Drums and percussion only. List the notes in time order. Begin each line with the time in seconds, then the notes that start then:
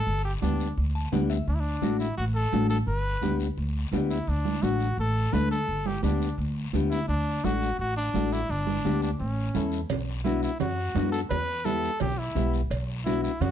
0.08 long guiro
0.42 high conga, short guiro
0.60 short guiro
0.77 long guiro
1.13 high conga, short guiro
1.30 short guiro
1.48 long guiro
1.82 high conga, short guiro
2.00 short guiro
2.17 long guiro
2.52 high conga, short guiro
2.70 short guiro
2.88 long guiro
3.22 high conga, short guiro
3.40 short guiro
3.58 long guiro
3.92 high conga, short guiro
4.11 short guiro
4.27 long guiro
4.45 high conga
4.63 high conga, short guiro
4.80 short guiro
4.98 long guiro
5.33 high conga, short guiro
5.51 short guiro
5.69 long guiro
5.86 high conga
6.03 high conga, short guiro
6.22 short guiro
6.39 long guiro
6.73 high conga, short guiro
6.92 short guiro
7.09 long guiro
7.44 high conga, short guiro
7.62 short guiro
7.80 long guiro
8.14 high conga, short guiro
8.32 short guiro
8.50 long guiro
8.67 high conga
8.85 high conga, short guiro
9.02 short guiro
9.20 long guiro
9.55 high conga, short guiro
9.72 short guiro
9.89 cowbell, low conga, long guiro
10.25 high conga, short guiro
10.43 short guiro
10.60 cowbell, low conga, long guiro
10.95 high conga, low timbale, short guiro
11.13 short guiro
11.31 cowbell, low conga, long guiro
11.66 high conga, short guiro
11.84 short guiro
12.00 cowbell, low conga, long guiro
12.36 high conga, short guiro
12.53 short guiro
12.71 cowbell, long guiro
13.06 high conga, short guiro
13.24 short guiro
13.41 cowbell, low conga, long guiro